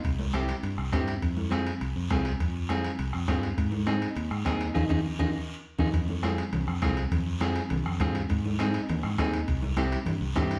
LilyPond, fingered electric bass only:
\new Staff \with { instrumentName = "Fingered electric bass" } { \clef bass \time 4/4 \key f \minor \tempo 4 = 204 c,2 g,8 c,8 g,4 | f,2 c,8 f,8 c,4 | f,2 c,8 f,8 g,4 | aes,2 ees,8 aes,8 ees,4 |
f,8 f,8 r8 f,8 r4. f,8 | f,2 c,8 f,8 c,4 | f,2 c,8 f,8 g,4 | aes,2 ees,8 aes,8 ees,4 |
c,2 g,8 c,8 g,4 | }